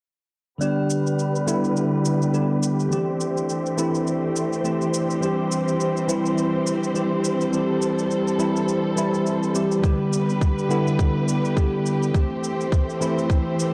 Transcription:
0.58 tine electric piano D3 G3 B3, string section D3 G3 B3 G4 B4, singing bowl D4 D5, cabasa
0.62 tine electric piano G4
0.90 cabasa
1.07 cabasa
1.19 cabasa
1.36 cabasa
1.46 tine electric piano D3 G3 B3 E4, cabasa
1.64 cabasa
1.77 cabasa
2.05 cabasa
2.22 cabasa
2.33 tine electric piano D3 G3 B3 G4, cabasa
2.63 cabasa
2.80 cabasa
2.89 tine electric piano E3 A3 C4 G4, string section E3 A3 C4 C5, cabasa
3.21 cabasa
3.37 cabasa
3.49 cabasa
3.66 cabasa
3.77 tine electric piano E3 A3 C4 E4, cabasa
3.95 cabasa
4.07 cabasa
4.36 cabasa
4.53 cabasa
4.63 tine electric piano E3 A3 C4 G4, cabasa
4.81 cabasa
4.94 cabasa
5.11 cabasa
5.20 tine electric piano E3 G3 C4 G4, string section G3, cabasa
5.52 cabasa
5.68 cabasa
5.80 cabasa
5.97 cabasa
6.07 tine electric piano E3 G3 C4 E4, cabasa
6.26 cabasa
6.38 cabasa
6.67 cabasa
6.84 cabasa
6.94 tine electric piano E3 G3 C4 G4, cabasa
7.24 cabasa
7.41 cabasa
7.51 tine electric piano E3 G3 C4 G4, string section A4, cabasa
7.82 cabasa
7.99 cabasa
8.11 cabasa
8.28 cabasa
8.38 tine electric piano E3 G3 C4 E4, cabasa
8.56 cabasa
8.69 cabasa
8.96 tine electric piano E3 G3 C4 E4, cabasa
9.14 cabasa
9.26 cabasa
9.43 cabasa
9.54 tine electric piano E3 G3 C4 G4, cabasa
9.72 cabasa
9.82 tine electric piano D3 G3 B3 G4, string section D3 B3 G4 B4, kick, cabasa
10.13 cabasa
10.29 cabasa
10.41 kick, cabasa
10.59 cabasa
10.69 tine electric piano D3 G3 B3 E4, cabasa
10.87 cabasa
10.99 kick, cabasa
11.28 cabasa
11.45 cabasa
11.55 tine electric piano D3 G3 B3 G4, kick, cabasa
11.86 cabasa
12.03 cabasa
12.12 tine electric piano E3 A3 C4 G4, string section E3 A3 C4 C5, kick, cabasa
12.44 cabasa
12.61 cabasa
12.72 kick, cabasa
12.90 cabasa
13.00 tine electric piano E3 A3 C4 E4, cabasa
13.18 cabasa
13.30 kick, cabasa
13.60 cabasa

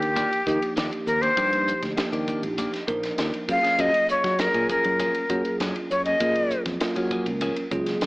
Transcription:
Already playing: tine electric piano F3 A#3 D4 D#4 A#4, flute G4
0.00 fretless electric bass D#2, muted clean electric guitar stroke, ride
0.16 clean electric guitar F3 A#3 D4 G4, kick, hi-hat pedal, ride
0.32 muted clean electric guitar stroke, ride
0.46 fretless electric bass D#3, tine electric piano F3 A#3 D4 D#4 G4, muted clean electric guitar stroke, kick, hi-hat pedal
0.62 muted fretless electric bass stroke, ride
0.76 fretless electric bass D#2, clean electric guitar F3 A#3 D4 G4, snare, hi-hat pedal, ride
0.92 muted clean electric guitar stroke, ride
1.06 fretless electric bass D#2, flute A#4, muted clean electric guitar stroke, hi-hat pedal
1.22 clean electric guitar A#3 D4 G4, flute C5, ride
1.37 fretless electric bass G2, clean electric guitar F3 A#3 D4 G4, tine electric piano F3 A#3 D4 D#4 G4, kick, hi-hat pedal, ride
1.53 muted clean electric guitar stroke, ride
1.68 muted clean electric guitar stroke, hi-hat pedal
1.83 fretless electric bass D2, kick, snare, ride
1.97 tine electric piano F3 A#3 D4 D#4 G4, muted clean electric guitar stroke, snare, hi-hat pedal, ride
2.12 fretless electric bass D#3, clean electric guitar A#3 D4 G4, ride
2.28 clean electric guitar F3 A#3 D4 G4, kick, hi-hat pedal
2.42 fretless electric bass A#1, muted clean electric guitar stroke, ride
2.58 clean electric guitar F3 A#3 D4 G4, kick, hi-hat pedal, ride
2.73 muted clean electric guitar stroke, snare, ride
2.87 fretless electric bass A#1, tine electric piano F3 A#3 D4 D#4 A#4, muted clean electric guitar stroke, kick, hi-hat pedal
3.03 snare, ride
3.18 fretless electric bass D#2, clean electric guitar F3 A#3 D4 G4, snare, hi-hat pedal, ride
3.33 muted clean electric guitar stroke, ride
3.48 fretless electric bass F#2, tine electric piano F#3 A#3 C#4 F4 G#4, flute F5, muted clean electric guitar stroke, kick, hi-hat pedal
3.63 clean electric guitar A#3 C#4 G#4, muted fretless electric bass stroke, snare, ride
3.78 fretless electric bass F#2, clean electric guitar F3 A#3 C#4 G#4, flute D#5, hi-hat pedal, ride
3.94 muted clean electric guitar stroke, ride
4.08 flute C#5, muted fretless electric bass stroke, muted clean electric guitar stroke, hi-hat pedal
4.24 fretless electric bass F#3, kick, snare, ride
4.39 tine electric piano F#3 A#3 C#4 F4 G#4, flute A#4, muted clean electric guitar stroke, snare, hi-hat pedal, ride
4.54 fretless electric bass A#2, clean electric guitar A#3 C#4 G#4, ride
4.69 clean electric guitar F3 A#3 C#4 G#4, flute A#4, kick, hi-hat pedal
4.84 fretless electric bass F#2, muted clean electric guitar stroke, ride
4.99 clean electric guitar F3 A#3 C#4 G#4, kick, hi-hat pedal, ride
5.14 muted clean electric guitar stroke, ride
5.29 fretless electric bass F#3, tine electric piano F#3 A#3 C#4 F4 G#4, muted clean electric guitar stroke, kick, hi-hat pedal
5.45 muted fretless electric bass stroke, ride
5.60 fretless electric bass F#2, clean electric guitar F3 A#3 C#4 G#4, snare, hi-hat pedal, ride
5.76 muted clean electric guitar stroke, ride
5.91 fretless electric bass F#2, flute C#5, muted clean electric guitar stroke, hi-hat pedal
6.05 clean electric guitar A#3 C#4 G#4, flute D#5, ride
6.20 fretless electric bass A#2, clean electric guitar F3 A#3 C#4 G#4, tine electric piano F#3 A#3 C#4 F4 G#4, kick, hi-hat pedal, ride
6.35 muted clean electric guitar stroke, ride
6.51 muted clean electric guitar stroke, hi-hat pedal
6.66 fretless electric bass F2, kick, snare, ride
6.80 tine electric piano F#3 A#3 C#4 F4 A#4, muted clean electric guitar stroke, snare, hi-hat pedal, ride
6.96 fretless electric bass F#3, clean electric guitar A#3 C#4 G#4, ride
7.11 clean electric guitar F3 A#3 C#4 G#4, kick, hi-hat pedal
7.26 fretless electric bass C#2, muted clean electric guitar stroke, ride
7.41 clean electric guitar F3 A#3 C#4 G#4, kick, hi-hat pedal, ride
7.56 muted clean electric guitar stroke, ride
7.71 fretless electric bass C#2, tine electric piano F#3 A#3 C#4 F4 G#4, muted clean electric guitar stroke, kick, hi-hat pedal
7.86 snare, ride
8.01 fretless electric bass C2, clean electric guitar F3 A#3 C#4 G#4, snare, hi-hat pedal, ride

